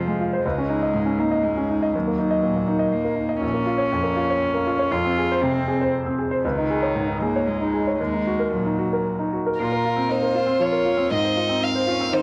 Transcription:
Already playing: F2 C3 F3 G#3 F4 C5
0.08 G#3
0.20 F4
0.33 C5
0.42 C#2 G#3
0.58 C#4
0.69 D#4
0.82 D#5
0.94 G#2
1.06 C#4
1.19 A#3 D#4
1.31 D#5
1.44 G#3
1.57 C#4
1.70 D#4
1.82 D#5
1.93 D#2 F#3
2.08 A#3
2.19 D#4
2.31 D#5
2.43 A#2
2.55 A#3
2.68 D#4
2.79 D#5
2.92 A#3
3.05 A#3
3.16 D#4
3.29 D#5
3.41 A#1 C#4
3.54 A#3
3.66 F4
3.78 C#5
3.92 F2
4.03 A#3
4.16 F4
4.30 C#5
4.54 A#3
4.66 F4
4.79 C#5
4.91 F2 F4
5.05 C4
5.18 G#4
5.32 C5
5.42 C3 C4
5.54 C4
5.68 G#4
5.81 C5
6.06 C4
6.19 G#4
6.31 C5
6.44 C#2 D#3
6.58 D#4
6.70 G#4
6.83 C#5
6.95 G#2
7.08 D#4
7.21 A#3 G#4
7.36 C#5
7.47 G#3
7.61 D#4
7.74 G#4
7.87 C#5
7.99 D#2 G#3
8.13 D#4
8.27 F#4
8.39 A#4
8.52 A#2 F#3
8.66 D#4
8.79 F#4
8.93 A#4
9.19 D#4
9.33 F#4
9.46 A#4
9.58 A#2 A#3 F4 A#4
9.72 A#4
9.85 F4
9.96 C4
10.09 D#4 C5
10.23 A#4
10.35 F4
10.46 C4
10.60 F3 F4 C#5
10.72 A#4
10.85 F4
10.97 C4
11.11 G#2 C4 D#5
11.25 C5
11.37 D#4 F4
11.49 C4
11.62 C4 F5
11.75 C5
11.87 C#4 F4
12.00 C4
12.12 D#3 D#4 C5

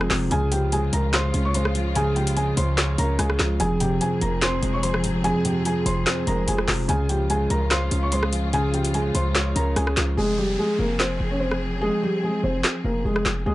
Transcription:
Already playing: F2 C3 F3 G#3 C4 G#4
0.01 cross-stick
0.10 F1 C3, snare, clap, open hi-hat
0.31 C#2 C#3 G#3 F4 G#4 G#5, closed hi-hat
0.52 F3 G4 G5, closed hi-hat
0.72 G#3 G#4 G#5, closed hi-hat
0.93 C#2 A#4 A#5, closed hi-hat
1.13 C5 F5 C6, snare, clap, closed hi-hat
1.34 C#2 C#4, closed hi-hat
1.45 C#5 C#6
1.54 G#3 C5 C6, closed hi-hat
1.65 cross-stick
1.75 F3, closed hi-hat
1.96 C#3 G#4 G#5, closed hi-hat
2.16 F3 G4 G5, closed hi-hat
2.27 closed hi-hat
2.37 G#3 G#4 G#5, closed hi-hat
2.57 C#2 C5 C6, closed hi-hat
2.78 C#5, snare, clap, closed hi-hat
2.98 C#2 C#4 A#4 A#5, closed hi-hat
3.19 C#2 G#3 G#4 G#5, cross-stick, closed hi-hat
3.30 cross-stick
3.39 C#2 F3, snare, clap, closed hi-hat
3.60 F1 F2 F3 C4 G#4 G#5, closed hi-hat
3.80 C3 G4 G5, closed hi-hat
4.01 F3 G#4 G#5, closed hi-hat
4.22 F1 A#4 A#5, closed hi-hat
4.42 C4 C5 C6, snare, clap, closed hi-hat
4.62 F1 G#3, closed hi-hat
4.73 C#5 C#6
4.83 F3 C5 C6, closed hi-hat
4.94 cross-stick
5.04 C3, closed hi-hat
5.24 F2 G#4 G#5, closed hi-hat
5.45 C3 G4 G5, closed hi-hat
5.65 F3 G#4 G#5, closed hi-hat
5.86 F1 C5 C6, closed hi-hat
6.07 C4, snare, clap, closed hi-hat
6.27 F1 G#3 A#4 A#5, closed hi-hat
6.48 F1 F3 G#4 G#5, closed hi-hat
6.58 cross-stick
6.68 F1 C3, snare, clap, open hi-hat
6.88 C#2 C#3 G#3 F4 G#4 G#5, closed hi-hat
7.09 F3 G4 G5, closed hi-hat
7.30 G#3 G#4 G#5, closed hi-hat
7.50 C#2 A#4 A#5, closed hi-hat
7.71 C5 F5 C6, snare, clap, closed hi-hat
7.91 C#2 C#4, closed hi-hat
8.03 C#5 C#6
8.12 G#3 C5 C6, closed hi-hat
8.23 cross-stick
8.32 F3, closed hi-hat
8.53 C#3 G#4 G#5, closed hi-hat
8.73 F3 G4 G5, closed hi-hat
8.85 closed hi-hat
8.94 G#3 G#4 G#5, closed hi-hat
9.15 C#2 C5 C6, closed hi-hat
9.35 C#5, snare, clap, closed hi-hat
9.56 C#2 C#4 A#4 A#5, closed hi-hat
9.76 C#2 G#3 G#4 G#5, cross-stick, closed hi-hat
9.87 cross-stick
9.97 C#2 F3, snare, clap, closed hi-hat
10.17 F1 F3 G#3 C4 G#4, downlifter
10.38 G3 G4
10.59 G#3 G#4
10.79 F1 A#3 A#4
11.00 C4 C5, snare, clap
11.20 F1
11.31 C#4 C#5
11.40 C4 C5
11.51 cross-stick
11.81 G#3 G#4
12.02 G3 G4
12.23 G#3 G#4
12.43 F1 C4 C5
12.64 snare, clap
12.84 F1 A#3 A#4
13.05 F1 G#3 G#4
13.16 cross-stick
13.26 F1, snare, clap
13.46 C#2 C#3 G#3 F4 G#4

